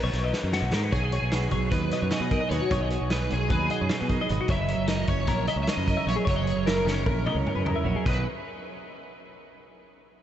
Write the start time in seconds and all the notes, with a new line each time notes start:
Already playing: B4
0.03 B1 C#5
0.13 B1, snare, ride
0.24 D#5
0.33 B4, snare
0.43 F#2 A#4
0.53 F#4, snare
0.62 B1
0.71 G#2 A#4, snare
0.83 B4
0.92 B1 B2 D#4 F#4 G#4 C#5, kick, closed hi-hat
1.03 D#5
1.12 F#4 C#5, closed hi-hat
1.22 B1
1.31 F#4 B4, snare, closed hi-hat
1.51 B1 F#3 C#5, kick, closed hi-hat
1.71 D#2 D#4 B4, kick, snare, closed hi-hat
1.91 B2 F#4 D#5, snare, closed hi-hat
2.02 F#2 C#5
2.10 G#4 D#5, snare, closed hi-hat
2.20 B2 B4
2.31 D#4 A#4, kick, closed hi-hat
2.41 D#5
2.49 D#2 B2 D#4 F#4 B4 C#5, closed hi-hat
2.53 G#4
2.61 F#4
2.69 B1 B2 D#4 F#4 G#4 C#5, kick, closed hi-hat
2.81 D#5
2.90 F#4 C#5, closed hi-hat
3.02 B1
3.10 G#4 B4, snare, closed hi-hat
3.29 B1 F#3 G#4 C#5, closed hi-hat
3.48 D#2 D#4 G#4 B4, kick, closed hi-hat
3.70 B2 F#4 D#5, closed hi-hat
3.81 F#2 C#5
3.89 D#4, snare, closed hi-hat
4.00 B2 F#4 B4
4.09 D#4 A#4, kick, closed hi-hat
4.21 D#5
4.29 G#1 B2 D#4 F#4 G#4 B4, closed hi-hat
4.41 F#4
4.48 F#1 F#3 E4 A#4 C#5 E5, kick, closed hi-hat
4.60 D#5
4.68 A#4 C#5, closed hi-hat
4.78 F#1
4.88 A#4 D#5, snare, closed hi-hat
5.07 F#1 C#4 C#5, kick, closed hi-hat
5.27 A#1 E4 A#4, kick, snare, closed hi-hat
5.47 C#3 A#4 D#5 E5, closed hi-hat
5.56 C#2 C#5
5.63 E5, closed hi-hat
5.68 A#4 D#5, snare
5.77 F#2 B4
5.87 E4 A#4, kick, closed hi-hat
5.97 E5
6.07 A#1 F#3 E4 A#4 C#5, closed hi-hat
6.16 G#4
6.25 F#1 F#3 E4 A#4 C#5, kick, closed hi-hat
6.30 C#5
6.36 D#5
6.45 G#4 C#5, closed hi-hat
6.56 F#1 A#4
6.66 E4 A#4, snare, closed hi-hat
6.85 F#1 C#4 C#5, snare
7.06 A#1 E4 A#4, kick
7.26 C#3 A#4 D#5, high tom
7.35 C#2 C#5
7.47 A#4, mid tom
7.55 F#2 B4
7.65 E4 A#4, mid tom
7.76 E5
7.84 A#1 F#3 E4 A#4 C#5
7.96 G#4
8.06 B1 B2 F#3 D#4 F#4 G#4 B4, kick, crash